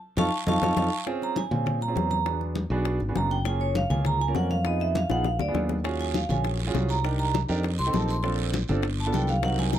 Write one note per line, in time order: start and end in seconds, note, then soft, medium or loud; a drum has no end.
0.17 0.28 F2 loud
0.17 0.27 D#4 loud
0.17 0.27 F4 loud
0.17 0.27 A4 loud
0.17 0.27 F5 loud
0.17 0.27 A5 loud
0.17 0.27 C#6 loud
0.17 low bongo loud
0.17 high conga loud
0.17 long guiro loud
0.46 0.58 F2 loud
0.46 0.57 D#4 loud
0.46 0.57 F4 medium
0.46 0.56 A4 medium
0.46 0.58 F5 medium
0.46 0.57 A5 loud
0.46 0.57 C#6 loud
0.46 low bongo medium
0.46 high conga loud
0.46 long guiro loud
0.62 0.73 F2 loud
0.62 0.72 D#4 loud
0.62 0.72 F4 loud
0.62 0.72 A4 loud
0.62 0.73 F5 loud
0.62 0.73 A5 loud
0.62 0.73 C#6 medium
0.62 low bongo loud
0.62 high conga loud
0.62 long guiro loud
0.76 0.88 F2 medium
0.76 0.87 D#4 loud
0.76 0.87 F4 loud
0.76 0.87 A4 loud
0.76 0.87 F5 loud
0.76 0.87 A5 medium
0.76 0.87 C#6 medium
0.76 low bongo loud
0.76 high conga loud
0.76 long guiro medium
1.06 1.38 C4 loud
1.06 1.38 C#4 medium
1.06 1.38 F4 medium
1.06 1.38 G#4 loud
1.06 high bongo medium
1.06 high conga soft
1.22 1.37 A#5 loud
1.22 high bongo soft
1.22 high conga soft
1.36 1.79 G#5 loud
1.36 high bongo medium
1.36 high conga medium
1.51 1.93 A#2 medium
1.51 1.78 C4 medium
1.51 1.78 C#4 medium
1.51 1.78 F4 medium
1.51 1.78 G#4 medium
1.51 high conga soft
1.51 low conga medium
1.66 high bongo medium
1.66 high conga soft
1.66 low conga medium
1.81 2.10 A#5 loud
1.81 high bongo soft
1.81 high conga soft
1.88 2.14 C4 medium
1.88 2.15 C#4 medium
1.88 2.15 F4 medium
1.88 2.15 G#4 medium
1.96 2.65 E2 medium
1.96 high bongo soft
1.96 low bongo medium
1.96 high conga medium
2.11 2.39 A#5 medium
2.11 high bongo soft
2.11 high conga medium
2.25 2.58 B3 medium
2.25 2.58 D4 medium
2.25 2.58 F#4 medium
2.25 2.58 G#4 medium
2.25 high bongo medium
2.25 high conga soft
2.41 high bongo soft
2.41 high conga soft
2.55 high bongo medium
2.55 high conga loud
2.70 2.98 B1 loud
2.70 2.97 B3 medium
2.70 2.97 D4 medium
2.70 2.97 F#4 medium
2.70 2.97 G#4 loud
2.70 high conga soft
2.85 high bongo medium
2.85 high conga soft
3.00 3.15 G#1 medium
3.00 high bongo soft
3.00 high conga soft
3.09 3.35 B3 medium
3.09 3.35 D4 medium
3.09 3.35 F#4 medium
3.09 3.35 G#4 medium
3.15 3.85 F#1 medium
3.15 3.31 A#5 medium
3.15 high bongo soft
3.15 low bongo medium
3.15 high conga medium
3.31 3.46 G5 medium
3.31 high bongo soft
3.45 3.77 A#3 medium
3.45 3.77 C#4 medium
3.45 3.77 F4 medium
3.45 3.77 G#4 medium
3.45 3.61 G#5 loud
3.45 high bongo medium
3.45 high conga soft
3.60 3.75 C#5 medium
3.60 high bongo soft
3.60 high conga soft
3.75 3.91 F5 medium
3.75 high bongo medium
3.75 high conga loud
3.90 4.32 C#2 loud
3.90 4.17 A#3 medium
3.90 4.17 C#4 medium
3.90 4.17 F4 medium
3.90 4.17 G#4 medium
3.90 4.05 G#5 loud
3.90 high conga soft
3.90 low conga medium
4.05 4.21 A#5 loud
4.05 high bongo medium
4.05 high conga soft
4.05 low conga medium
4.20 4.36 G#5 medium
4.20 high bongo soft
4.20 high conga soft
4.28 4.54 A#3 medium
4.28 4.54 C#4 medium
4.28 4.54 F4 medium
4.28 4.54 A#4 medium
4.35 5.05 F2 medium
4.35 4.50 F#5 medium
4.35 high bongo soft
4.35 low bongo medium
4.35 high conga medium
4.50 4.65 F5 loud
4.50 high bongo soft
4.50 high conga medium
4.65 4.97 B3 medium
4.65 4.97 D#4 medium
4.65 4.97 F4 medium
4.65 4.97 G#4 medium
4.65 4.80 D#5 medium
4.65 high bongo medium
4.65 high conga soft
4.80 4.95 E5 loud
4.80 high bongo soft
4.80 high conga soft
4.95 5.11 F5 medium
4.95 high bongo medium
4.95 high conga loud
5.10 5.38 A#1 loud
5.10 5.26 B3 medium
5.10 5.26 D#4 medium
5.10 5.26 F4 medium
5.10 5.26 G#4 medium
5.10 5.25 F#5 loud
5.10 high bongo medium
5.10 high conga soft
5.24 5.40 F5 medium
5.24 low bongo medium
5.24 high conga soft
5.39 5.54 D2 medium
5.39 5.49 D5 loud
5.39 low bongo loud
5.39 high conga soft
5.48 5.74 B3 medium
5.48 5.74 D4 medium
5.48 5.74 F4 medium
5.48 5.74 G#4 medium
5.54 6.24 D#2 medium
5.54 low bongo medium
5.54 high conga medium
5.69 low bongo medium
5.69 high conga medium
5.84 6.16 C#4 loud
5.84 6.16 F4 medium
5.84 6.16 F#4 medium
5.84 6.16 G#4 loud
5.84 high bongo medium
5.84 long guiro medium
5.99 6.15 G#5 medium
5.99 high bongo soft
5.99 high conga soft
6.14 6.30 F5 medium
6.14 high bongo medium
6.14 high conga loud
6.14 short guiro medium
6.29 6.71 A#1 loud
6.29 6.56 C#4 medium
6.29 6.56 F4 medium
6.29 6.56 F#4 medium
6.29 6.56 G#4 medium
6.29 6.45 G#5 loud
6.29 high conga soft
6.29 low conga medium
6.29 short guiro medium
6.44 high bongo medium
6.44 long guiro medium
6.60 high bongo soft
6.60 high conga soft
6.67 6.93 C#4 medium
6.67 6.93 F4 medium
6.67 6.93 F#4 medium
6.67 6.94 G#4 loud
6.74 7.44 C2 medium
6.74 high bongo soft
6.74 low bongo medium
6.74 high conga medium
6.74 short guiro medium
6.89 7.04 A#5 loud
6.89 high bongo soft
6.89 short guiro medium
7.04 7.36 D4 medium
7.04 7.36 D#4 medium
7.04 7.36 G4 medium
7.04 7.36 A#4 medium
7.04 7.19 G5 medium
7.04 high bongo medium
7.04 high conga soft
7.04 long guiro medium
7.19 7.34 A#5 loud
7.19 high bongo soft
7.19 high conga soft
7.34 high bongo medium
7.34 high conga loud
7.34 short guiro medium
7.49 7.77 F2 loud
7.49 7.64 D4 medium
7.49 7.64 D#4 medium
7.49 7.64 G4 medium
7.49 7.64 A#4 loud
7.49 high conga soft
7.49 short guiro medium
7.63 high bongo medium
7.63 high conga soft
7.63 long guiro medium
7.79 7.93 C2 medium
7.79 7.94 C6 loud
7.79 high bongo soft
7.79 high conga soft
7.87 8.13 C4 medium
7.87 8.13 D#4 medium
7.87 8.13 G4 medium
7.87 8.13 A4 medium
7.93 8.63 A#1 medium
7.93 8.09 A5 medium
7.93 high bongo soft
7.93 low bongo medium
7.93 high conga medium
7.93 short guiro medium
8.08 8.19 C6 loud
8.08 high bongo soft
8.08 short guiro medium
8.23 8.56 C4 medium
8.23 8.55 D4 medium
8.23 8.55 F4 medium
8.23 8.55 A4 medium
8.23 high bongo medium
8.23 high conga soft
8.23 long guiro medium
8.38 high bongo soft
8.38 high conga soft
8.53 high bongo medium
8.53 high conga loud
8.53 short guiro medium
8.68 9.11 G1 loud
8.68 8.84 C4 medium
8.68 8.84 D4 medium
8.68 8.84 F4 medium
8.68 8.84 A4 loud
8.68 high conga soft
8.68 low conga medium
8.68 short guiro medium
8.83 high bongo medium
8.83 long guiro medium
8.99 9.14 A5 loud
8.99 high bongo soft
8.99 high conga soft
9.06 9.33 B3 medium
9.06 9.32 D4 medium
9.06 9.32 F4 medium
9.06 9.33 A4 medium
9.13 9.79 C2 loud
9.13 9.29 G5 medium
9.13 high bongo soft
9.13 low bongo medium
9.13 high conga medium
9.13 short guiro medium
9.27 9.43 F5 medium
9.27 high bongo soft
9.27 high conga medium
9.27 short guiro medium
9.43 9.75 C4 medium
9.43 9.75 D#4 medium
9.43 9.75 F#4 medium
9.43 9.75 A#4 medium
9.43 9.59 F#5 medium
9.43 high bongo medium
9.43 high conga medium
9.43 long guiro medium
9.59 9.73 G#5 loud
9.59 high bongo soft
9.59 high conga loud
9.73 9.79 A#5 medium
9.73 high bongo medium
9.73 high conga loud
9.73 short guiro medium